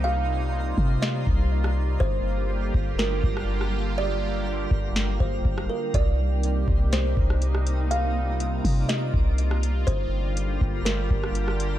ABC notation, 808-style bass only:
X:1
M:4/4
L:1/8
Q:1/4=122
K:Cm
V:1 name="808-style bass" clef=bass
C,,3 C,2 C,,3 | G,,,3 G,,,2 G,,,3- | G,,,3 G,,,2 G,,, G,,, z | C,,3 C,,2 C,,3- |
C,,3 C,2 C,,3 | G,,,3 G,,,2 G,,,3 |]